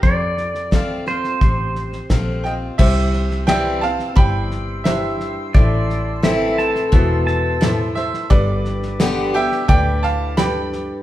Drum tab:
CC |----------------|x---------------|----------------|----------------|
HH |----p-------p---|----p-------p---|----p-------p---|----p-------p---|
SD |o-ooo-ooo-ooo-o-|o-ooo-ooo-o-o-o-|o-o-o-ooo-o-o-oo|o-ooo-ooo-o-o-o-|
BD |o---o---o---o---|o-------o-------|o-------o-------|o-------o-------|